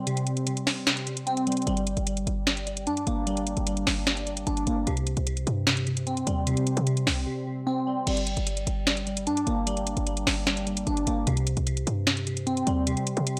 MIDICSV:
0, 0, Header, 1, 4, 480
1, 0, Start_track
1, 0, Key_signature, -2, "minor"
1, 0, Tempo, 400000
1, 83, Time_signature, 4, 2, 24, 8
1, 16078, End_track
2, 0, Start_track
2, 0, Title_t, "Synth keys"
2, 0, Program_c, 0, 88
2, 0, Control_c, 0, 64, 127
2, 0, Note_on_c, 0, 48, 73
2, 0, Note_on_c, 0, 55, 78
2, 0, Note_on_c, 0, 60, 90
2, 83, Note_off_c, 0, 48, 0
2, 83, Note_on_c, 0, 48, 91
2, 550, Note_off_c, 0, 48, 0
2, 565, Note_on_c, 0, 48, 71
2, 801, Note_off_c, 0, 60, 0
2, 1027, Note_off_c, 0, 48, 0
2, 1042, Note_off_c, 0, 55, 0
2, 1042, Note_on_c, 0, 48, 78
2, 1268, Note_off_c, 0, 48, 0
2, 1283, Note_on_c, 0, 48, 66
2, 1519, Note_on_c, 0, 60, 104
2, 1762, Note_on_c, 0, 55, 72
2, 1989, Note_off_c, 0, 55, 0
2, 2001, Note_off_c, 0, 60, 0
2, 2002, Note_off_c, 0, 48, 0
2, 2004, Note_on_c, 0, 55, 96
2, 2017, Control_c, 0, 64, 0
2, 2222, Control_c, 0, 64, 127
2, 2468, Note_off_c, 0, 55, 0
2, 2482, Note_on_c, 0, 55, 71
2, 2953, Note_off_c, 0, 55, 0
2, 2967, Note_on_c, 0, 55, 76
2, 3189, Note_off_c, 0, 55, 0
2, 3203, Note_on_c, 0, 55, 73
2, 3444, Note_on_c, 0, 62, 96
2, 3685, Note_on_c, 0, 58, 76
2, 3906, Note_off_c, 0, 55, 0
2, 3921, Note_on_c, 0, 55, 91
2, 4386, Note_off_c, 0, 55, 0
2, 4401, Note_on_c, 0, 55, 70
2, 4643, Note_off_c, 0, 62, 0
2, 4863, Note_off_c, 0, 55, 0
2, 4878, Note_on_c, 0, 55, 79
2, 4884, Note_off_c, 0, 58, 0
2, 5104, Note_off_c, 0, 55, 0
2, 5119, Note_on_c, 0, 55, 71
2, 5362, Note_on_c, 0, 62, 93
2, 5609, Note_on_c, 0, 58, 73
2, 5841, Note_off_c, 0, 55, 0
2, 5842, Note_off_c, 0, 62, 0
2, 5844, Note_on_c, 0, 48, 92
2, 5846, Note_off_c, 0, 58, 0
2, 5856, Control_c, 0, 64, 0
2, 6096, Control_c, 0, 64, 127
2, 6314, Note_off_c, 0, 48, 0
2, 6328, Note_on_c, 0, 48, 74
2, 6790, Note_off_c, 0, 48, 0
2, 6804, Note_on_c, 0, 48, 71
2, 7028, Note_off_c, 0, 48, 0
2, 7042, Note_on_c, 0, 48, 71
2, 7279, Note_on_c, 0, 60, 91
2, 7522, Note_on_c, 0, 55, 79
2, 7749, Note_off_c, 0, 48, 0
2, 7763, Note_on_c, 0, 48, 89
2, 8231, Note_off_c, 0, 48, 0
2, 8245, Note_on_c, 0, 48, 73
2, 8481, Note_off_c, 0, 60, 0
2, 8707, Note_off_c, 0, 48, 0
2, 8722, Note_off_c, 0, 55, 0
2, 8722, Note_on_c, 0, 48, 77
2, 8949, Note_off_c, 0, 48, 0
2, 8963, Note_on_c, 0, 48, 66
2, 9200, Note_on_c, 0, 60, 106
2, 9442, Note_on_c, 0, 55, 72
2, 9671, Note_off_c, 0, 55, 0
2, 9681, Note_off_c, 0, 60, 0
2, 9683, Note_off_c, 0, 48, 0
2, 9685, Note_on_c, 0, 55, 98
2, 9696, Control_c, 0, 64, 0
2, 9905, Control_c, 0, 64, 127
2, 10148, Note_off_c, 0, 55, 0
2, 10163, Note_on_c, 0, 55, 74
2, 10633, Note_off_c, 0, 55, 0
2, 10647, Note_on_c, 0, 55, 79
2, 10869, Note_off_c, 0, 55, 0
2, 10883, Note_on_c, 0, 55, 77
2, 11124, Note_on_c, 0, 62, 97
2, 11365, Note_on_c, 0, 58, 76
2, 11586, Note_off_c, 0, 55, 0
2, 11600, Note_on_c, 0, 55, 93
2, 12066, Note_off_c, 0, 55, 0
2, 12081, Note_on_c, 0, 55, 72
2, 12323, Note_off_c, 0, 62, 0
2, 12543, Note_off_c, 0, 55, 0
2, 12557, Note_on_c, 0, 55, 80
2, 12564, Note_off_c, 0, 58, 0
2, 12784, Note_off_c, 0, 55, 0
2, 12799, Note_on_c, 0, 55, 73
2, 13042, Note_on_c, 0, 62, 97
2, 13288, Note_on_c, 0, 58, 76
2, 13521, Note_off_c, 0, 55, 0
2, 13522, Note_off_c, 0, 62, 0
2, 13524, Note_on_c, 0, 48, 92
2, 13525, Note_off_c, 0, 58, 0
2, 13540, Control_c, 0, 64, 0
2, 13781, Control_c, 0, 64, 127
2, 13993, Note_off_c, 0, 48, 0
2, 14007, Note_on_c, 0, 48, 76
2, 14470, Note_off_c, 0, 48, 0
2, 14484, Note_on_c, 0, 48, 71
2, 14708, Note_off_c, 0, 48, 0
2, 14723, Note_on_c, 0, 48, 74
2, 14960, Note_on_c, 0, 60, 93
2, 15202, Note_on_c, 0, 55, 79
2, 15429, Note_off_c, 0, 48, 0
2, 15444, Note_on_c, 0, 48, 92
2, 15911, Note_off_c, 0, 48, 0
2, 15926, Note_on_c, 0, 48, 77
2, 16078, Note_off_c, 0, 48, 0
2, 16078, Note_off_c, 0, 55, 0
2, 16078, Note_off_c, 0, 60, 0
2, 16078, End_track
3, 0, Start_track
3, 0, Title_t, "808-style bass"
3, 0, Program_c, 1, 38
3, 2002, Note_on_c, 1, 31, 109
3, 2348, Note_off_c, 1, 31, 0
3, 2362, Note_on_c, 1, 31, 102
3, 2708, Note_off_c, 1, 31, 0
3, 2722, Note_on_c, 1, 31, 110
3, 3442, Note_on_c, 1, 43, 101
3, 3460, Note_off_c, 1, 31, 0
3, 3670, Note_off_c, 1, 43, 0
3, 3682, Note_on_c, 1, 31, 103
3, 4258, Note_off_c, 1, 31, 0
3, 4282, Note_on_c, 1, 31, 101
3, 4628, Note_off_c, 1, 31, 0
3, 4643, Note_on_c, 1, 31, 108
3, 5334, Note_off_c, 1, 31, 0
3, 5362, Note_on_c, 1, 31, 103
3, 5593, Note_off_c, 1, 31, 0
3, 5603, Note_on_c, 1, 31, 101
3, 5833, Note_off_c, 1, 31, 0
3, 5842, Note_on_c, 1, 36, 114
3, 6188, Note_off_c, 1, 36, 0
3, 6202, Note_on_c, 1, 36, 97
3, 6548, Note_off_c, 1, 36, 0
3, 6562, Note_on_c, 1, 43, 109
3, 7484, Note_off_c, 1, 43, 0
3, 7522, Note_on_c, 1, 39, 99
3, 7868, Note_off_c, 1, 39, 0
3, 8122, Note_on_c, 1, 48, 101
3, 8468, Note_off_c, 1, 48, 0
3, 8482, Note_on_c, 1, 36, 107
3, 8713, Note_off_c, 1, 36, 0
3, 9683, Note_on_c, 1, 31, 117
3, 10028, Note_off_c, 1, 31, 0
3, 10043, Note_on_c, 1, 31, 102
3, 10388, Note_off_c, 1, 31, 0
3, 10402, Note_on_c, 1, 31, 107
3, 11123, Note_on_c, 1, 43, 101
3, 11141, Note_off_c, 1, 31, 0
3, 11351, Note_off_c, 1, 43, 0
3, 11363, Note_on_c, 1, 31, 106
3, 11939, Note_off_c, 1, 31, 0
3, 11962, Note_on_c, 1, 31, 102
3, 12308, Note_off_c, 1, 31, 0
3, 12322, Note_on_c, 1, 31, 105
3, 13013, Note_off_c, 1, 31, 0
3, 13043, Note_on_c, 1, 31, 105
3, 13273, Note_off_c, 1, 31, 0
3, 13282, Note_on_c, 1, 31, 105
3, 13513, Note_off_c, 1, 31, 0
3, 13522, Note_on_c, 1, 36, 118
3, 13868, Note_off_c, 1, 36, 0
3, 13883, Note_on_c, 1, 36, 102
3, 14228, Note_off_c, 1, 36, 0
3, 14243, Note_on_c, 1, 43, 111
3, 15164, Note_off_c, 1, 43, 0
3, 15202, Note_on_c, 1, 39, 105
3, 15548, Note_off_c, 1, 39, 0
3, 15802, Note_on_c, 1, 48, 102
3, 16078, Note_off_c, 1, 48, 0
3, 16078, End_track
4, 0, Start_track
4, 0, Title_t, "Drums"
4, 82, Note_on_c, 9, 42, 86
4, 202, Note_off_c, 9, 42, 0
4, 203, Note_on_c, 9, 42, 65
4, 320, Note_off_c, 9, 42, 0
4, 320, Note_on_c, 9, 42, 81
4, 440, Note_off_c, 9, 42, 0
4, 441, Note_on_c, 9, 42, 60
4, 560, Note_off_c, 9, 42, 0
4, 560, Note_on_c, 9, 42, 85
4, 680, Note_off_c, 9, 42, 0
4, 683, Note_on_c, 9, 42, 62
4, 802, Note_on_c, 9, 38, 93
4, 802, Note_on_c, 9, 46, 74
4, 803, Note_off_c, 9, 42, 0
4, 922, Note_off_c, 9, 38, 0
4, 922, Note_off_c, 9, 46, 0
4, 1041, Note_on_c, 9, 38, 123
4, 1042, Note_on_c, 9, 42, 77
4, 1161, Note_off_c, 9, 38, 0
4, 1162, Note_off_c, 9, 42, 0
4, 1163, Note_on_c, 9, 42, 57
4, 1281, Note_off_c, 9, 42, 0
4, 1281, Note_on_c, 9, 42, 63
4, 1401, Note_off_c, 9, 42, 0
4, 1402, Note_on_c, 9, 42, 83
4, 1521, Note_off_c, 9, 42, 0
4, 1521, Note_on_c, 9, 42, 74
4, 1641, Note_off_c, 9, 42, 0
4, 1644, Note_on_c, 9, 42, 55
4, 1762, Note_off_c, 9, 42, 0
4, 1762, Note_on_c, 9, 42, 79
4, 1822, Note_off_c, 9, 42, 0
4, 1822, Note_on_c, 9, 42, 69
4, 1882, Note_off_c, 9, 42, 0
4, 1882, Note_on_c, 9, 42, 53
4, 1942, Note_off_c, 9, 42, 0
4, 1942, Note_on_c, 9, 42, 45
4, 2002, Note_off_c, 9, 42, 0
4, 2002, Note_on_c, 9, 42, 85
4, 2122, Note_off_c, 9, 42, 0
4, 2123, Note_on_c, 9, 42, 63
4, 2240, Note_off_c, 9, 42, 0
4, 2240, Note_on_c, 9, 42, 82
4, 2360, Note_off_c, 9, 42, 0
4, 2361, Note_on_c, 9, 42, 59
4, 2480, Note_off_c, 9, 42, 0
4, 2480, Note_on_c, 9, 42, 83
4, 2600, Note_off_c, 9, 42, 0
4, 2603, Note_on_c, 9, 42, 61
4, 2723, Note_off_c, 9, 42, 0
4, 2723, Note_on_c, 9, 42, 66
4, 2843, Note_off_c, 9, 42, 0
4, 2962, Note_on_c, 9, 38, 125
4, 2962, Note_on_c, 9, 42, 74
4, 3082, Note_off_c, 9, 38, 0
4, 3082, Note_off_c, 9, 42, 0
4, 3083, Note_on_c, 9, 42, 53
4, 3201, Note_off_c, 9, 42, 0
4, 3201, Note_on_c, 9, 42, 62
4, 3321, Note_off_c, 9, 42, 0
4, 3322, Note_on_c, 9, 42, 84
4, 3441, Note_off_c, 9, 42, 0
4, 3441, Note_on_c, 9, 42, 73
4, 3561, Note_off_c, 9, 42, 0
4, 3564, Note_on_c, 9, 42, 55
4, 3682, Note_off_c, 9, 42, 0
4, 3682, Note_on_c, 9, 42, 78
4, 3802, Note_off_c, 9, 42, 0
4, 3922, Note_on_c, 9, 42, 82
4, 4042, Note_off_c, 9, 42, 0
4, 4043, Note_on_c, 9, 42, 64
4, 4160, Note_off_c, 9, 42, 0
4, 4160, Note_on_c, 9, 42, 81
4, 4280, Note_off_c, 9, 42, 0
4, 4281, Note_on_c, 9, 42, 60
4, 4400, Note_off_c, 9, 42, 0
4, 4400, Note_on_c, 9, 42, 85
4, 4520, Note_off_c, 9, 42, 0
4, 4523, Note_on_c, 9, 42, 61
4, 4642, Note_on_c, 9, 38, 91
4, 4642, Note_on_c, 9, 46, 73
4, 4643, Note_off_c, 9, 42, 0
4, 4762, Note_off_c, 9, 38, 0
4, 4762, Note_off_c, 9, 46, 0
4, 4881, Note_on_c, 9, 38, 122
4, 4882, Note_on_c, 9, 42, 76
4, 5001, Note_off_c, 9, 38, 0
4, 5002, Note_off_c, 9, 42, 0
4, 5003, Note_on_c, 9, 42, 55
4, 5121, Note_off_c, 9, 42, 0
4, 5121, Note_on_c, 9, 42, 65
4, 5241, Note_off_c, 9, 42, 0
4, 5242, Note_on_c, 9, 42, 86
4, 5361, Note_off_c, 9, 42, 0
4, 5361, Note_on_c, 9, 42, 75
4, 5481, Note_off_c, 9, 42, 0
4, 5484, Note_on_c, 9, 42, 57
4, 5602, Note_off_c, 9, 42, 0
4, 5602, Note_on_c, 9, 42, 78
4, 5722, Note_off_c, 9, 42, 0
4, 5842, Note_on_c, 9, 42, 84
4, 5962, Note_off_c, 9, 42, 0
4, 5963, Note_on_c, 9, 42, 61
4, 6080, Note_off_c, 9, 42, 0
4, 6080, Note_on_c, 9, 42, 82
4, 6200, Note_off_c, 9, 42, 0
4, 6201, Note_on_c, 9, 42, 61
4, 6320, Note_off_c, 9, 42, 0
4, 6320, Note_on_c, 9, 42, 84
4, 6440, Note_off_c, 9, 42, 0
4, 6442, Note_on_c, 9, 42, 63
4, 6562, Note_off_c, 9, 42, 0
4, 6562, Note_on_c, 9, 42, 66
4, 6682, Note_off_c, 9, 42, 0
4, 6801, Note_on_c, 9, 38, 121
4, 6802, Note_on_c, 9, 42, 75
4, 6921, Note_off_c, 9, 38, 0
4, 6922, Note_off_c, 9, 42, 0
4, 6923, Note_on_c, 9, 42, 55
4, 7041, Note_off_c, 9, 42, 0
4, 7041, Note_on_c, 9, 42, 65
4, 7161, Note_off_c, 9, 42, 0
4, 7162, Note_on_c, 9, 42, 83
4, 7281, Note_off_c, 9, 42, 0
4, 7281, Note_on_c, 9, 42, 73
4, 7401, Note_off_c, 9, 42, 0
4, 7404, Note_on_c, 9, 42, 58
4, 7522, Note_off_c, 9, 42, 0
4, 7522, Note_on_c, 9, 42, 78
4, 7642, Note_off_c, 9, 42, 0
4, 7762, Note_on_c, 9, 42, 87
4, 7882, Note_off_c, 9, 42, 0
4, 7883, Note_on_c, 9, 42, 64
4, 8000, Note_off_c, 9, 42, 0
4, 8000, Note_on_c, 9, 42, 81
4, 8120, Note_off_c, 9, 42, 0
4, 8122, Note_on_c, 9, 42, 61
4, 8240, Note_off_c, 9, 42, 0
4, 8240, Note_on_c, 9, 42, 84
4, 8360, Note_off_c, 9, 42, 0
4, 8363, Note_on_c, 9, 42, 60
4, 8482, Note_on_c, 9, 38, 90
4, 8483, Note_off_c, 9, 42, 0
4, 8483, Note_on_c, 9, 46, 72
4, 8602, Note_off_c, 9, 38, 0
4, 8603, Note_off_c, 9, 46, 0
4, 9683, Note_on_c, 9, 42, 88
4, 9683, Note_on_c, 9, 49, 103
4, 9803, Note_off_c, 9, 42, 0
4, 9803, Note_off_c, 9, 49, 0
4, 9803, Note_on_c, 9, 42, 62
4, 9921, Note_off_c, 9, 42, 0
4, 9921, Note_on_c, 9, 42, 83
4, 10041, Note_off_c, 9, 42, 0
4, 10042, Note_on_c, 9, 42, 63
4, 10160, Note_off_c, 9, 42, 0
4, 10160, Note_on_c, 9, 42, 86
4, 10280, Note_off_c, 9, 42, 0
4, 10283, Note_on_c, 9, 42, 64
4, 10402, Note_off_c, 9, 42, 0
4, 10402, Note_on_c, 9, 42, 69
4, 10522, Note_off_c, 9, 42, 0
4, 10642, Note_on_c, 9, 38, 124
4, 10642, Note_on_c, 9, 42, 78
4, 10762, Note_off_c, 9, 38, 0
4, 10762, Note_off_c, 9, 42, 0
4, 10763, Note_on_c, 9, 42, 59
4, 10881, Note_off_c, 9, 42, 0
4, 10881, Note_on_c, 9, 42, 67
4, 11001, Note_off_c, 9, 42, 0
4, 11002, Note_on_c, 9, 42, 85
4, 11122, Note_off_c, 9, 42, 0
4, 11122, Note_on_c, 9, 42, 75
4, 11242, Note_off_c, 9, 42, 0
4, 11244, Note_on_c, 9, 42, 58
4, 11362, Note_off_c, 9, 42, 0
4, 11362, Note_on_c, 9, 42, 82
4, 11482, Note_off_c, 9, 42, 0
4, 11602, Note_on_c, 9, 42, 86
4, 11722, Note_off_c, 9, 42, 0
4, 11723, Note_on_c, 9, 42, 64
4, 11840, Note_off_c, 9, 42, 0
4, 11840, Note_on_c, 9, 42, 85
4, 11960, Note_off_c, 9, 42, 0
4, 11961, Note_on_c, 9, 42, 62
4, 12080, Note_off_c, 9, 42, 0
4, 12080, Note_on_c, 9, 42, 84
4, 12200, Note_off_c, 9, 42, 0
4, 12203, Note_on_c, 9, 42, 63
4, 12322, Note_on_c, 9, 38, 90
4, 12322, Note_on_c, 9, 46, 76
4, 12323, Note_off_c, 9, 42, 0
4, 12442, Note_off_c, 9, 38, 0
4, 12442, Note_off_c, 9, 46, 0
4, 12561, Note_on_c, 9, 38, 125
4, 12562, Note_on_c, 9, 42, 81
4, 12681, Note_off_c, 9, 38, 0
4, 12682, Note_off_c, 9, 42, 0
4, 12683, Note_on_c, 9, 42, 57
4, 12801, Note_off_c, 9, 42, 0
4, 12801, Note_on_c, 9, 42, 67
4, 12921, Note_off_c, 9, 42, 0
4, 12922, Note_on_c, 9, 42, 85
4, 13041, Note_off_c, 9, 42, 0
4, 13041, Note_on_c, 9, 42, 74
4, 13161, Note_off_c, 9, 42, 0
4, 13164, Note_on_c, 9, 42, 57
4, 13282, Note_off_c, 9, 42, 0
4, 13282, Note_on_c, 9, 42, 79
4, 13402, Note_off_c, 9, 42, 0
4, 13522, Note_on_c, 9, 42, 87
4, 13642, Note_off_c, 9, 42, 0
4, 13643, Note_on_c, 9, 42, 64
4, 13760, Note_off_c, 9, 42, 0
4, 13760, Note_on_c, 9, 42, 85
4, 13880, Note_off_c, 9, 42, 0
4, 13881, Note_on_c, 9, 42, 62
4, 14000, Note_off_c, 9, 42, 0
4, 14000, Note_on_c, 9, 42, 86
4, 14120, Note_off_c, 9, 42, 0
4, 14123, Note_on_c, 9, 42, 64
4, 14243, Note_off_c, 9, 42, 0
4, 14243, Note_on_c, 9, 42, 68
4, 14363, Note_off_c, 9, 42, 0
4, 14482, Note_on_c, 9, 38, 123
4, 14482, Note_on_c, 9, 42, 82
4, 14602, Note_off_c, 9, 38, 0
4, 14602, Note_off_c, 9, 42, 0
4, 14603, Note_on_c, 9, 42, 58
4, 14722, Note_off_c, 9, 42, 0
4, 14722, Note_on_c, 9, 42, 67
4, 14842, Note_off_c, 9, 42, 0
4, 14842, Note_on_c, 9, 42, 82
4, 14961, Note_off_c, 9, 42, 0
4, 14961, Note_on_c, 9, 42, 74
4, 15081, Note_off_c, 9, 42, 0
4, 15084, Note_on_c, 9, 42, 57
4, 15202, Note_off_c, 9, 42, 0
4, 15202, Note_on_c, 9, 42, 78
4, 15322, Note_off_c, 9, 42, 0
4, 15442, Note_on_c, 9, 42, 89
4, 15562, Note_off_c, 9, 42, 0
4, 15563, Note_on_c, 9, 42, 63
4, 15681, Note_off_c, 9, 42, 0
4, 15681, Note_on_c, 9, 42, 84
4, 15801, Note_off_c, 9, 42, 0
4, 15801, Note_on_c, 9, 42, 61
4, 15920, Note_off_c, 9, 42, 0
4, 15920, Note_on_c, 9, 42, 85
4, 16040, Note_off_c, 9, 42, 0
4, 16078, End_track
0, 0, End_of_file